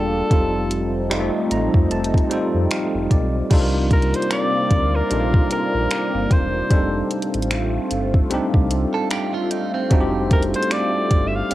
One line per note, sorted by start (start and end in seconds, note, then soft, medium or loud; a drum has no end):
0.00 0.22 E1 medium
0.00 0.27 G3 medium
0.00 0.30 G3 medium
0.00 0.33 A#3 medium
0.00 0.27 D4 medium
0.00 0.33 D4 medium
0.00 0.27 F4 medium
0.00 0.32 F4 medium
0.00 0.27 G4 medium
0.00 0.33 G#4 medium
0.00 0.33 A4 medium
0.00 1.12 A4 loud
0.30 1.30 F1 loud
0.30 3.47 F3 medium
0.30 0.80 G3 medium
0.30 3.47 A3 medium
0.30 3.47 C4 medium
0.30 0.80 C4 medium
0.30 3.47 D#4 medium
0.30 0.81 D#4 medium
0.30 0.81 F4 medium
0.30 0.81 A4 medium
0.30 kick loud
0.30 closed hi-hat medium
0.71 closed hi-hat medium
1.10 1.84 G3 medium
1.10 1.84 C4 medium
1.10 1.85 D#4 medium
1.10 1.85 F4 medium
1.10 1.20 G4 medium
1.10 finger snap loud
1.10 closed hi-hat medium
1.20 1.89 A3 medium
1.51 1.69 A1 medium
1.51 1.88 A#5 medium
1.51 closed hi-hat medium
1.74 1.87 F2 medium
1.74 kick medium
1.91 2.22 F1 loud
1.91 2.28 A5 medium
1.91 closed hi-hat medium
2.04 closed hi-hat medium
2.14 kick medium
2.14 closed hi-hat soft
2.30 3.04 G3 medium
2.30 3.04 C4 medium
2.30 3.05 D#4 medium
2.30 3.05 F4 medium
2.30 3.05 A4 medium
2.30 2.68 G5 medium
2.30 closed hi-hat medium
2.54 2.67 F2 loud
2.71 3.08 F5 medium
2.71 finger snap loud
2.71 closed hi-hat medium
2.94 3.07 F1 medium
3.11 3.42 B1 medium
3.11 3.48 D5 medium
3.11 kick medium
3.11 closed hi-hat medium
3.50 4.14 C2 loud
3.50 6.68 C3 medium
3.50 4.49 G3 medium
3.50 6.68 A#3 medium
3.50 11.47 C4 medium
3.50 4.50 D4 medium
3.50 4.50 D#4 medium
3.50 6.68 F4 loud
3.50 4.51 F4 medium
3.50 3.60 A4 medium
3.50 6.68 D5 medium
3.50 kick loud
3.50 closed hi-hat medium
3.50 crash medium
3.60 4.54 A#4 medium
3.91 4.17 A#4 medium
3.91 kick loud
3.91 closed hi-hat medium
4.02 closed hi-hat soft
4.14 4.32 C5 medium
4.14 closed hi-hat medium
4.22 closed hi-hat medium
4.31 4.97 D5 loud
4.31 finger snap loud
4.31 closed hi-hat medium
4.71 5.02 D2 medium
4.71 kick medium
4.71 closed hi-hat medium
4.96 5.52 A#4 medium
5.10 5.42 A#1 loud
5.10 6.09 G3 medium
5.10 6.10 D4 medium
5.10 6.10 D#4 medium
5.10 6.10 F4 medium
5.10 5.20 A4 medium
5.10 closed hi-hat medium
5.20 6.14 A#4 medium
5.34 kick medium
5.51 6.34 A#4 loud
5.51 closed hi-hat medium
5.74 5.87 A#1 medium
5.91 finger snap loud
5.91 closed hi-hat medium
6.14 6.27 G1 medium
6.31 6.62 E1 medium
6.31 7.12 C5 medium
6.31 kick medium
6.31 closed hi-hat medium
6.70 7.02 F1 loud
6.70 7.69 G3 medium
6.70 11.54 A3 medium
6.70 7.70 C4 medium
6.70 7.70 D4 medium
6.70 7.70 D#4 medium
6.70 11.54 F4 medium
6.70 7.71 A4 medium
6.70 kick loud
6.70 closed hi-hat medium
7.11 closed hi-hat medium
7.22 closed hi-hat medium
7.34 7.79 A1 medium
7.34 closed hi-hat medium
7.42 closed hi-hat medium
7.51 finger snap loud
7.51 closed hi-hat medium
7.91 8.22 G1 medium
7.91 closed hi-hat medium
8.14 kick medium
8.30 8.40 C2 soft
8.30 9.29 G3 medium
8.30 9.30 C4 medium
8.30 9.30 D4 medium
8.30 9.31 D#4 medium
8.30 9.31 G4 medium
8.30 closed hi-hat medium
8.54 8.86 C2 medium
8.54 kick medium
8.71 closed hi-hat medium
8.94 9.10 A4 medium
9.11 9.33 G4 medium
9.11 finger snap loud
9.11 closed hi-hat medium
9.34 9.51 F4 medium
9.51 9.73 D#4 medium
9.51 closed hi-hat medium
9.74 10.90 C4 medium
9.90 10.54 F1 loud
9.90 10.89 G3 medium
9.90 10.90 C4 medium
9.90 10.90 D4 medium
9.90 10.91 D#4 medium
9.90 10.00 F#4 medium
9.90 kick loud
9.90 closed hi-hat medium
10.00 10.94 G4 medium
10.31 10.43 A#4 medium
10.31 kick medium
10.31 closed hi-hat medium
10.42 closed hi-hat medium
10.54 10.74 C5 medium
10.54 closed hi-hat medium
10.62 closed hi-hat medium
10.71 11.29 D5 loud
10.71 finger snap loud
10.71 closed hi-hat medium
11.11 11.42 G1 medium
11.11 kick medium
11.11 closed hi-hat medium
11.27 11.37 E5 medium
11.36 11.54 F5 loud
11.50 11.54 D#1 loud
11.50 11.54 G3 medium
11.50 11.54 C4 medium
11.50 11.54 D5 medium
11.50 closed hi-hat medium